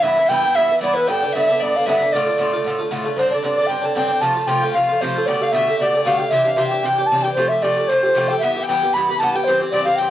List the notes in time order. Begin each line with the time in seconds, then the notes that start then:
0.02 G2 E3 B3 E4 E5
0.17 B3 E4
0.21 E3
0.28 G2 E3 B3 E4 G5
0.43 E3 B3 E4
0.55 G2 E3 B3 E4 E5
0.69 E3 B3 E4
0.81 G2 E3 B3 E4 D5
0.94 B3 E4 B4
0.98 E3
1.07 G2 D3 B3 D4 G5
1.22 D3 B3 D4
1.33 G2 D3 B3 E5
1.37 D4
1.47 B3 D4 E5
1.52 D3
1.60 G2 D3 B3 D5 E5
1.64 D4
1.74 D3 B3 D4 F5
1.86 G2 D3 B3 D4 E5
2.01 D3 B3 D4
2.12 A2 D3 A3 F4 D5
2.27 D3 A3 F4
2.38 A2 D3 A3 F4
2.53 D3 A3 F4
2.64 A2 D3 A3 F4
2.79 D3 A3 F4
2.91 A2 D3 A3 F4
3.04 D3 A3 F4
3.17 G2 D3 C4 D4 C5
3.30 D3 C4 D4 D5
3.42 G2 D3 C4 D4 D5
3.57 D3 C4 D4
3.67 G2 D3 C4 G5
3.72 D4
3.81 D3 C4 D4 A5
3.95 G2 D3 C4 D4 G5
4.08 C4 D4
4.12 D3
4.21 C3 F3 A3 F4 A5
4.35 A3 F4
4.40 F3
4.47 C3 F3 A3 F4 G5
4.62 F3 A3 F4
4.73 C3 F3 A3 F4 F5
4.89 A3 F4
4.93 F3
5.01 C3 F3 A3 F4 C5
5.16 F3 A3 F4
5.26 B2 D3 A3 G4 D5
5.40 D3 A3 G4 F5
5.52 B2 D3 A3 G4 E5
5.67 D3 A3 G4
5.80 B2 D3 A3 G4 D5
5.94 D3 A3 G4
6.05 B2 D3 A3 G4 F5
6.18 A3 G4 G5
6.23 D3
6.29 C3 E3 E5
6.33 D4 G4 E5
6.44 D4 G4 E5 F5
6.48 E3
6.54 C3 E3 D4 G4 E5
6.67 G4 G5
6.73 E3 D4
6.79 C3 G5
6.84 E3 D4 G4 G5
6.98 E3 D4 G4
7.06 A5
7.12 C3 E3 D4 G4
7.22 G4 G5
7.27 E3 D4
7.33 C3 F3 C5
7.38 A3 G4
7.48 A3 G4 E5
7.53 F3
7.62 C3 F3 A3 G4 D5
7.76 F3 A3 G4
7.88 C3 F3 A3 G4 C5
8.03 F3 A3 G4
8.15 C3 F3 A3 G4
8.28 A3 G4 G5
8.33 F3
8.39 G2 E5
8.43 E3 B3 G4
8.57 E3 B3 G4
8.61 G5
8.67 G2 E3 B3 G5
8.71 G4
8.83 E3 B3 G4
8.94 G2 E3 B3 B5
8.98 G4
9.09 B3 G4 B5
9.13 E3
9.18 G2 E3 A5
9.23 B3 G4
9.33 B3 G4 G5
9.38 E3
9.44 G2 C5
9.48 E3 C4 G4
9.61 E3 C4 G4
9.71 G2 E3 C4 G4 D5
9.84 G4 F5
9.88 E3 C4
9.96 G2 E3 G5
10.01 C4 G4